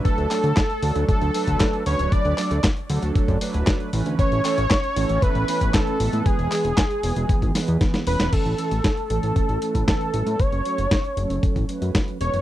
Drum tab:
CC |----------------|----------------|----------------|----------------|
HH |xxoxxxoxxxoxxxox|xxoxxxoxxxoxxxox|xxoxxxoxxxoxxxox|xxoxxxoxxxoxxxox|
CP |--x-x-------x---|--x-x-------x---|--x-x-------x---|--x-x-----------|
SD |----o-------o---|----o-------o---|----o-------o---|----o-----o-oo-o|
BD |o---o---o--oo---|o---o---oo--o---|o---o---o--oo---|o---o---oo--o---|

CC |x---------------|----------------|
HH |xxxxxxxxxxxxxxxx|xxxxxxxxxxxxxxxx|
CP |----------------|----------------|
SD |----o-------o---|----o-------o---|
BD |o---o---o--oo---|o---o---oo--o---|